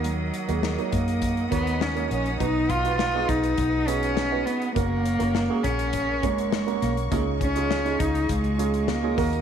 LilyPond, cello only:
\new Staff \with { instrumentName = "Cello" } { \time 4/4 \key cis \mixolydian \tempo 4 = 102 fis4. ais4 b8 cis'8 cis'8 | dis'8 eis'8 eis'8 dis'4 cis'4 b8 | ais4. cis'4 gis4 ais8 | ais8 cis'4 dis'8 gis4 ais4 | }